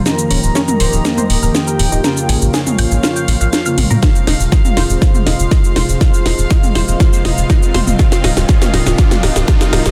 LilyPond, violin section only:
\new Staff \with { instrumentName = "Violin section" } { \time 4/4 \key f \minor \tempo 4 = 121 bes''2. g''4~ | g''4 f''2. | f''2 f''2 | f''2 f''2 |
f''4 f''4 f''4 f''4 | }